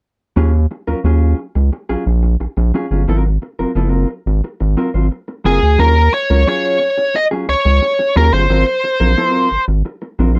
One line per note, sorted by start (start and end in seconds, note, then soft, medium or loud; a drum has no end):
0.36 0.66 D#2 medium
0.36 0.51 F#3 medium
0.36 0.51 C#4 medium
0.36 0.51 F4 medium
0.36 0.51 G#4 medium
0.54 muted clean electric guitar stroke soft
0.71 muted clean electric guitar stroke soft
0.87 0.95 D#2 soft
0.87 0.99 F#3 medium
0.87 0.99 C#4 medium
0.87 0.99 F4 medium
0.87 0.99 A#4 medium
1.04 1.34 D#2 medium
1.04 1.36 F#3 medium
1.04 1.36 C#4 medium
1.04 1.37 F4 medium
1.04 1.37 G#4 medium
1.39 muted clean electric guitar stroke soft
1.55 1.71 C#2 medium
1.55 muted clean electric guitar stroke soft
1.72 muted clean electric guitar stroke soft
1.89 1.96 A#1 soft
1.89 2.04 F#3 medium
1.89 2.04 C#4 medium
1.89 2.04 F4 medium
1.89 2.04 G#4 medium
2.06 2.36 A#1 loud
2.06 muted clean electric guitar stroke soft
2.23 muted clean electric guitar stroke soft
2.40 2.47 A#1 medium
2.40 muted clean electric guitar stroke soft
2.57 2.72 A#1 medium
2.57 muted clean electric guitar stroke soft
2.74 2.85 F#3 medium
2.74 2.86 C#4 medium
2.74 2.86 F4 medium
2.74 2.86 G#4 medium
2.91 3.06 G1 medium
2.91 3.03 F#3 soft
2.91 3.03 C#4 soft
2.91 3.02 F4 medium
2.91 3.02 G#4 medium
3.08 3.38 G#1 loud
3.08 3.28 F#3 medium
3.08 3.25 C4 medium
3.08 3.25 F4 medium
3.08 3.24 A#4 medium
3.25 muted clean electric guitar stroke soft
3.42 muted clean electric guitar stroke soft
3.59 3.66 F#1 medium
3.59 3.71 F#3 soft
3.59 3.71 C4 medium
3.59 3.71 F4 medium
3.59 3.70 A#4 medium
3.75 4.05 F#1 loud
3.75 3.88 F3 medium
3.75 3.89 B3 medium
3.75 3.90 E4 medium
3.75 3.90 A4 medium
3.88 4.07 F#3 medium
3.88 4.07 C4 medium
3.88 4.08 F4 medium
3.88 4.08 A#4 medium
4.10 muted clean electric guitar stroke soft
4.26 4.41 G#1 medium
4.26 muted clean electric guitar stroke soft
4.44 muted clean electric guitar stroke soft
4.60 4.76 G#1 medium
4.60 muted clean electric guitar stroke soft
4.77 4.88 F#3 medium
4.77 4.89 C4 medium
4.77 4.89 F4 medium
4.77 4.89 A#4 medium
4.94 5.09 G#1 medium
4.94 5.06 F#3 soft
4.94 5.06 C4 soft
4.94 5.06 F4 medium
4.94 5.05 C5 medium
5.11 muted clean electric guitar stroke soft
5.28 muted clean electric guitar stroke soft
5.44 5.60 F#1 loud
5.44 5.59 F#3 medium
5.44 5.59 C4 medium
5.44 5.60 F4 medium
5.44 5.81 G#4 medium
5.44 5.60 A#4 medium
5.62 5.77 D2 loud
5.78 6.09 D#2 medium
5.78 5.93 F#3 medium
5.78 5.93 C#4 medium
5.78 5.94 F4 medium
5.78 5.94 G#4 medium
5.78 6.13 A#4 medium
5.96 muted clean electric guitar stroke soft
6.12 6.47 C#5 medium
6.12 muted clean electric guitar stroke soft
6.30 6.45 C#2 medium
6.30 6.42 F#3 soft
6.30 6.42 C#4 medium
6.30 6.41 F4 medium
6.30 6.41 A#4 medium
6.47 6.78 F#3 medium
6.47 6.78 C#4 medium
6.47 6.79 F4 medium
6.47 6.79 G#4 medium
6.47 7.18 C#5 loud
6.81 muted clean electric guitar stroke soft
6.98 muted clean electric guitar stroke medium
7.14 7.25 D#5 loud
7.14 muted clean electric guitar stroke soft
7.31 7.46 F#3 medium
7.31 7.46 C#4 medium
7.31 7.46 F4 medium
7.31 7.45 G#4 medium
7.48 7.55 C#2 soft
7.48 8.17 C#5 loud
7.48 muted clean electric guitar stroke soft
7.65 7.80 C#2 loud
7.65 muted clean electric guitar stroke soft
7.82 muted clean electric guitar stroke soft
7.99 muted clean electric guitar stroke soft
8.16 8.31 D#2 medium
8.16 8.27 F#3 medium
8.16 8.27 C#4 medium
8.16 8.27 F4 medium
8.16 8.28 G#4 medium
8.16 8.33 A#4 medium
8.32 8.47 G1 medium
8.32 8.44 F#3 medium
8.32 8.44 C#4 medium
8.32 8.44 F4 medium
8.32 8.44 G#4 medium
8.32 9.64 C5 medium
8.49 8.64 G#1 loud
8.49 8.64 F#3 medium
8.49 8.64 C4 medium
8.49 8.64 F4 medium
8.49 8.64 A#4 medium
8.66 muted clean electric guitar stroke soft
8.84 muted clean electric guitar stroke soft
9.00 9.15 A#1 medium
9.00 9.12 F#3 medium
9.00 9.12 C4 soft
9.00 9.11 F4 medium
9.00 9.11 A#4 medium
9.17 9.30 F3 medium
9.17 9.30 B3 medium
9.17 9.31 E4 medium
9.17 9.31 A4 loud
9.30 9.48 F#3 medium
9.30 9.49 C4 medium
9.30 9.49 F4 medium
9.30 9.49 A#4 loud
9.51 9.58 G#1 medium
9.51 muted clean electric guitar stroke soft
9.68 9.83 G#1 medium
9.68 muted clean electric guitar stroke soft
9.85 muted clean electric guitar stroke soft
10.02 muted clean electric guitar stroke soft
10.19 10.39 A#1 medium
10.19 10.30 F#3 medium
10.19 10.30 C4 medium
10.19 10.30 F4 medium
10.19 10.30 A#4 medium
10.35 10.39 C4 medium
10.35 10.39 F4 medium
10.35 10.39 C5 medium